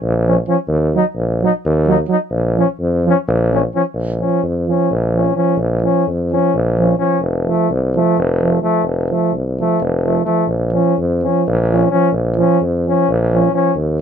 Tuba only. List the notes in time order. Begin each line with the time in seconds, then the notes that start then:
0.03 A#1
0.68 D#2
1.16 A#1
1.65 D#2
2.31 A#1
2.80 F2
3.28 A#1
3.94 A#1
4.43 F2
4.91 A#1
5.57 A#1
6.07 F2
6.55 A#1
7.20 F1
7.69 C2
8.18 F1
8.82 F1
9.32 C2
9.81 F1
10.47 A#1
10.98 F2
11.47 A#1
12.13 A#1
12.61 F2
13.09 A#1
13.76 D#2